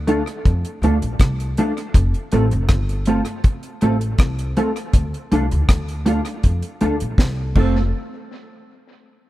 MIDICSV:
0, 0, Header, 1, 4, 480
1, 0, Start_track
1, 0, Tempo, 749064
1, 1244, Time_signature, 4, 2, 24, 8
1, 5959, End_track
2, 0, Start_track
2, 0, Title_t, "Clean electric guitar"
2, 0, Program_c, 0, 27
2, 47, Note_on_c, 0, 57, 87
2, 52, Note_on_c, 0, 62, 79
2, 53, Note_on_c, 0, 65, 93
2, 57, Note_on_c, 0, 69, 97
2, 131, Note_off_c, 0, 57, 0
2, 134, Note_off_c, 0, 62, 0
2, 134, Note_off_c, 0, 65, 0
2, 137, Note_off_c, 0, 69, 0
2, 536, Note_on_c, 0, 57, 81
2, 537, Note_on_c, 0, 62, 84
2, 540, Note_on_c, 0, 65, 85
2, 542, Note_on_c, 0, 69, 88
2, 616, Note_off_c, 0, 57, 0
2, 616, Note_off_c, 0, 62, 0
2, 618, Note_off_c, 0, 65, 0
2, 619, Note_off_c, 0, 69, 0
2, 1014, Note_on_c, 0, 57, 90
2, 1017, Note_on_c, 0, 62, 102
2, 1018, Note_on_c, 0, 65, 96
2, 1023, Note_on_c, 0, 69, 93
2, 1094, Note_off_c, 0, 57, 0
2, 1096, Note_off_c, 0, 62, 0
2, 1096, Note_off_c, 0, 65, 0
2, 1099, Note_off_c, 0, 69, 0
2, 1490, Note_on_c, 0, 57, 92
2, 1495, Note_on_c, 0, 60, 98
2, 1497, Note_on_c, 0, 65, 92
2, 1497, Note_on_c, 0, 69, 92
2, 1572, Note_off_c, 0, 57, 0
2, 1575, Note_off_c, 0, 60, 0
2, 1576, Note_off_c, 0, 65, 0
2, 1576, Note_off_c, 0, 69, 0
2, 1969, Note_on_c, 0, 57, 80
2, 1970, Note_on_c, 0, 60, 93
2, 1975, Note_on_c, 0, 65, 104
2, 1978, Note_on_c, 0, 69, 96
2, 2051, Note_off_c, 0, 57, 0
2, 2052, Note_off_c, 0, 60, 0
2, 2055, Note_off_c, 0, 65, 0
2, 2056, Note_off_c, 0, 69, 0
2, 2448, Note_on_c, 0, 57, 82
2, 2453, Note_on_c, 0, 60, 85
2, 2457, Note_on_c, 0, 65, 80
2, 2458, Note_on_c, 0, 69, 93
2, 2531, Note_off_c, 0, 57, 0
2, 2533, Note_off_c, 0, 60, 0
2, 2535, Note_off_c, 0, 65, 0
2, 2536, Note_off_c, 0, 69, 0
2, 2928, Note_on_c, 0, 57, 80
2, 2930, Note_on_c, 0, 60, 81
2, 2932, Note_on_c, 0, 65, 90
2, 2939, Note_on_c, 0, 69, 98
2, 3011, Note_off_c, 0, 57, 0
2, 3012, Note_off_c, 0, 60, 0
2, 3013, Note_off_c, 0, 65, 0
2, 3016, Note_off_c, 0, 69, 0
2, 3406, Note_on_c, 0, 57, 78
2, 3412, Note_on_c, 0, 62, 89
2, 3413, Note_on_c, 0, 65, 81
2, 3417, Note_on_c, 0, 69, 98
2, 3490, Note_off_c, 0, 57, 0
2, 3493, Note_off_c, 0, 62, 0
2, 3493, Note_off_c, 0, 65, 0
2, 3495, Note_off_c, 0, 69, 0
2, 3881, Note_on_c, 0, 57, 76
2, 3884, Note_on_c, 0, 62, 84
2, 3890, Note_on_c, 0, 65, 94
2, 3891, Note_on_c, 0, 69, 93
2, 3967, Note_off_c, 0, 57, 0
2, 3968, Note_off_c, 0, 62, 0
2, 3972, Note_off_c, 0, 65, 0
2, 3972, Note_off_c, 0, 69, 0
2, 4364, Note_on_c, 0, 57, 81
2, 4367, Note_on_c, 0, 62, 74
2, 4370, Note_on_c, 0, 65, 87
2, 4373, Note_on_c, 0, 69, 99
2, 4449, Note_off_c, 0, 57, 0
2, 4450, Note_off_c, 0, 62, 0
2, 4451, Note_off_c, 0, 65, 0
2, 4453, Note_off_c, 0, 69, 0
2, 4845, Note_on_c, 0, 57, 70
2, 4845, Note_on_c, 0, 60, 78
2, 4852, Note_on_c, 0, 65, 76
2, 4854, Note_on_c, 0, 69, 85
2, 4993, Note_off_c, 0, 57, 0
2, 4994, Note_off_c, 0, 60, 0
2, 4997, Note_off_c, 0, 65, 0
2, 4998, Note_off_c, 0, 69, 0
2, 5959, End_track
3, 0, Start_track
3, 0, Title_t, "Upright bass"
3, 0, Program_c, 1, 32
3, 0, Note_on_c, 1, 38, 85
3, 129, Note_off_c, 1, 38, 0
3, 295, Note_on_c, 1, 41, 99
3, 402, Note_off_c, 1, 41, 0
3, 523, Note_on_c, 1, 38, 83
3, 635, Note_off_c, 1, 38, 0
3, 656, Note_on_c, 1, 34, 77
3, 754, Note_off_c, 1, 34, 0
3, 768, Note_on_c, 1, 36, 83
3, 977, Note_off_c, 1, 36, 0
3, 1249, Note_on_c, 1, 29, 109
3, 1358, Note_off_c, 1, 29, 0
3, 1491, Note_on_c, 1, 33, 98
3, 1599, Note_off_c, 1, 33, 0
3, 1618, Note_on_c, 1, 29, 90
3, 1727, Note_off_c, 1, 29, 0
3, 1727, Note_on_c, 1, 31, 98
3, 2047, Note_off_c, 1, 31, 0
3, 2449, Note_on_c, 1, 33, 83
3, 2657, Note_off_c, 1, 33, 0
3, 2687, Note_on_c, 1, 36, 86
3, 2895, Note_off_c, 1, 36, 0
3, 3165, Note_on_c, 1, 38, 103
3, 3275, Note_off_c, 1, 38, 0
3, 3408, Note_on_c, 1, 36, 86
3, 3517, Note_off_c, 1, 36, 0
3, 3537, Note_on_c, 1, 38, 93
3, 3633, Note_off_c, 1, 38, 0
3, 3647, Note_on_c, 1, 38, 83
3, 3966, Note_off_c, 1, 38, 0
3, 4129, Note_on_c, 1, 41, 88
3, 4237, Note_off_c, 1, 41, 0
3, 4371, Note_on_c, 1, 38, 76
3, 4478, Note_off_c, 1, 38, 0
3, 4498, Note_on_c, 1, 34, 79
3, 4594, Note_off_c, 1, 34, 0
3, 4605, Note_on_c, 1, 36, 82
3, 4814, Note_off_c, 1, 36, 0
3, 4844, Note_on_c, 1, 29, 90
3, 5067, Note_off_c, 1, 29, 0
3, 5959, End_track
4, 0, Start_track
4, 0, Title_t, "Drums"
4, 49, Note_on_c, 9, 42, 79
4, 113, Note_off_c, 9, 42, 0
4, 175, Note_on_c, 9, 42, 50
4, 239, Note_off_c, 9, 42, 0
4, 291, Note_on_c, 9, 36, 115
4, 292, Note_on_c, 9, 42, 72
4, 356, Note_off_c, 9, 36, 0
4, 356, Note_off_c, 9, 42, 0
4, 415, Note_on_c, 9, 42, 51
4, 479, Note_off_c, 9, 42, 0
4, 532, Note_on_c, 9, 42, 65
4, 596, Note_off_c, 9, 42, 0
4, 655, Note_on_c, 9, 42, 62
4, 719, Note_off_c, 9, 42, 0
4, 765, Note_on_c, 9, 42, 93
4, 767, Note_on_c, 9, 36, 127
4, 774, Note_on_c, 9, 37, 113
4, 829, Note_off_c, 9, 42, 0
4, 831, Note_off_c, 9, 36, 0
4, 838, Note_off_c, 9, 37, 0
4, 897, Note_on_c, 9, 42, 52
4, 961, Note_off_c, 9, 42, 0
4, 1009, Note_on_c, 9, 42, 68
4, 1073, Note_off_c, 9, 42, 0
4, 1137, Note_on_c, 9, 42, 50
4, 1201, Note_off_c, 9, 42, 0
4, 1246, Note_on_c, 9, 36, 123
4, 1247, Note_on_c, 9, 42, 93
4, 1310, Note_off_c, 9, 36, 0
4, 1311, Note_off_c, 9, 42, 0
4, 1373, Note_on_c, 9, 42, 42
4, 1437, Note_off_c, 9, 42, 0
4, 1484, Note_on_c, 9, 42, 80
4, 1548, Note_off_c, 9, 42, 0
4, 1610, Note_on_c, 9, 42, 49
4, 1674, Note_off_c, 9, 42, 0
4, 1721, Note_on_c, 9, 42, 81
4, 1722, Note_on_c, 9, 37, 113
4, 1724, Note_on_c, 9, 36, 111
4, 1785, Note_off_c, 9, 42, 0
4, 1786, Note_off_c, 9, 37, 0
4, 1788, Note_off_c, 9, 36, 0
4, 1853, Note_on_c, 9, 42, 47
4, 1917, Note_off_c, 9, 42, 0
4, 1957, Note_on_c, 9, 42, 79
4, 2021, Note_off_c, 9, 42, 0
4, 2084, Note_on_c, 9, 42, 54
4, 2148, Note_off_c, 9, 42, 0
4, 2203, Note_on_c, 9, 42, 75
4, 2206, Note_on_c, 9, 36, 113
4, 2268, Note_off_c, 9, 42, 0
4, 2270, Note_off_c, 9, 36, 0
4, 2325, Note_on_c, 9, 42, 50
4, 2389, Note_off_c, 9, 42, 0
4, 2443, Note_on_c, 9, 42, 63
4, 2507, Note_off_c, 9, 42, 0
4, 2570, Note_on_c, 9, 42, 64
4, 2634, Note_off_c, 9, 42, 0
4, 2681, Note_on_c, 9, 42, 87
4, 2683, Note_on_c, 9, 36, 123
4, 2690, Note_on_c, 9, 37, 122
4, 2745, Note_off_c, 9, 42, 0
4, 2747, Note_off_c, 9, 36, 0
4, 2754, Note_off_c, 9, 37, 0
4, 2811, Note_on_c, 9, 42, 54
4, 2875, Note_off_c, 9, 42, 0
4, 2926, Note_on_c, 9, 42, 78
4, 2990, Note_off_c, 9, 42, 0
4, 3052, Note_on_c, 9, 42, 52
4, 3117, Note_off_c, 9, 42, 0
4, 3162, Note_on_c, 9, 42, 94
4, 3163, Note_on_c, 9, 36, 118
4, 3226, Note_off_c, 9, 42, 0
4, 3227, Note_off_c, 9, 36, 0
4, 3295, Note_on_c, 9, 42, 40
4, 3359, Note_off_c, 9, 42, 0
4, 3407, Note_on_c, 9, 42, 74
4, 3471, Note_off_c, 9, 42, 0
4, 3533, Note_on_c, 9, 42, 53
4, 3598, Note_off_c, 9, 42, 0
4, 3644, Note_on_c, 9, 36, 117
4, 3644, Note_on_c, 9, 37, 117
4, 3644, Note_on_c, 9, 42, 89
4, 3708, Note_off_c, 9, 36, 0
4, 3708, Note_off_c, 9, 42, 0
4, 3709, Note_off_c, 9, 37, 0
4, 3771, Note_on_c, 9, 42, 50
4, 3835, Note_off_c, 9, 42, 0
4, 3884, Note_on_c, 9, 42, 87
4, 3948, Note_off_c, 9, 42, 0
4, 4007, Note_on_c, 9, 42, 55
4, 4071, Note_off_c, 9, 42, 0
4, 4123, Note_on_c, 9, 42, 71
4, 4126, Note_on_c, 9, 36, 100
4, 4187, Note_off_c, 9, 42, 0
4, 4190, Note_off_c, 9, 36, 0
4, 4245, Note_on_c, 9, 42, 53
4, 4309, Note_off_c, 9, 42, 0
4, 4362, Note_on_c, 9, 42, 64
4, 4426, Note_off_c, 9, 42, 0
4, 4488, Note_on_c, 9, 42, 64
4, 4552, Note_off_c, 9, 42, 0
4, 4601, Note_on_c, 9, 36, 121
4, 4607, Note_on_c, 9, 38, 63
4, 4666, Note_off_c, 9, 36, 0
4, 4671, Note_off_c, 9, 38, 0
4, 4841, Note_on_c, 9, 49, 74
4, 4842, Note_on_c, 9, 36, 98
4, 4905, Note_off_c, 9, 49, 0
4, 4906, Note_off_c, 9, 36, 0
4, 5959, End_track
0, 0, End_of_file